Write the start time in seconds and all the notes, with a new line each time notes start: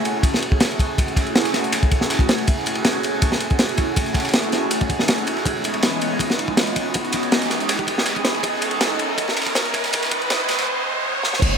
Already playing: F#1 A3 C#4 E4 F#4 G#4, riser
0.05 closed hi-hat, ride
0.23 kick, closed hi-hat, ride
0.34 snare
0.42 ride
0.52 kick
0.60 F#1, snare, closed hi-hat, ride
0.71 closed hi-hat, ride
0.79 kick, closed hi-hat, ride
0.98 F#1 A3 C#4 E4 F#4 G#4, kick, closed hi-hat, ride
1.08 closed hi-hat
1.17 kick, snare, closed hi-hat, ride
1.26 closed hi-hat, ride
1.35 snare, closed hi-hat, ride
1.45 snare, closed hi-hat
1.54 snare, closed hi-hat, ride
1.64 closed hi-hat
1.72 F#1, snare, closed hi-hat, ride
1.83 kick, closed hi-hat
1.91 kick, closed hi-hat, ride
2.01 snare
2.10 snare, closed hi-hat, ride
2.19 kick, closed hi-hat
2.29 snare, closed hi-hat, ride
2.38 snare, ride
2.47 F#1 A3 C#4 E4 F#4 G#4, kick, closed hi-hat, ride
2.57 snare
2.66 closed hi-hat, ride
2.75 ride
2.85 snare, open hi-hat, ride
3.03 closed hi-hat, ride
3.22 kick, closed hi-hat, ride
3.32 snare
3.40 closed hi-hat, ride
3.50 kick, closed hi-hat
3.59 F#1, snare, closed hi-hat, ride
3.69 closed hi-hat, ride
3.78 kick, closed hi-hat, ride
3.96 F#1 A3 C#4 E4 F#4 G#4, kick, closed hi-hat, ride
4.06 closed hi-hat
4.14 kick, snare, open hi-hat, ride
4.20 snare, open hi-hat
4.25 snare, open hi-hat, ride
4.29 snare, open hi-hat
4.33 snare, closed hi-hat, ride
4.44 closed hi-hat
4.52 snare, closed hi-hat, ride
4.71 F#1, closed hi-hat, ride
4.81 kick, closed hi-hat
4.90 kick, closed hi-hat, ride
4.99 snare
5.08 snare, closed hi-hat, ride
5.18 closed hi-hat
5.27 closed hi-hat, ride
5.37 snare
5.45 C#2 E3 G#3 B3 C#4 D#4, kick, closed hi-hat, ride
5.55 snare
5.64 closed hi-hat, ride
5.74 ride
5.83 snare, open hi-hat, ride
6.01 closed hi-hat, ride
6.19 kick, closed hi-hat, ride
6.30 snare
6.39 ride
6.48 kick
6.57 C#2, snare, closed hi-hat, ride
6.67 closed hi-hat, ride
6.76 kick, closed hi-hat, ride
6.94 C#2 E3 G#3 B3 C#4 D#4, kick, closed hi-hat, ride
7.05 closed hi-hat
7.12 kick, snare, closed hi-hat, ride
7.23 closed hi-hat, ride
7.32 snare, closed hi-hat, ride
7.42 snare, closed hi-hat
7.50 snare, closed hi-hat, ride
7.60 closed hi-hat
7.69 C#2, snare, closed hi-hat, ride
7.79 kick, closed hi-hat
7.87 kick, closed hi-hat, ride
7.98 snare
8.05 snare, closed hi-hat, ride
8.16 kick, closed hi-hat
8.25 snare, closed hi-hat, ride
8.34 snare, ride
8.43 C#2 E3 G#3 B3 C#4 D#4, kick, closed hi-hat, ride
8.54 snare
8.62 closed hi-hat, ride
8.71 ride
8.81 snare, open hi-hat, ride
8.99 closed hi-hat, ride
9.18 kick, closed hi-hat, ride
9.28 snare
9.37 snare, open hi-hat, ride
9.42 snare, open hi-hat
9.46 kick, snare, open hi-hat
9.55 C#2, snare, closed hi-hat, ride
9.65 closed hi-hat, ride
9.74 kick, snare, open hi-hat, ride
9.84 snare, open hi-hat
9.93 C#2 E3 G#3 B3 C#4 D#4, kick, snare, open hi-hat, ride
10.03 snare, open hi-hat
10.11 kick, closed hi-hat, ride
10.21 ride
10.30 snare, closed hi-hat, ride
10.40 closed hi-hat
10.48 snare, open hi-hat, ride
10.59 snare, open hi-hat
11.23 snare
11.33 snare
11.42 F#1 A3 C#4 E4 F#4 G#4, kick, crash, ride, downlifter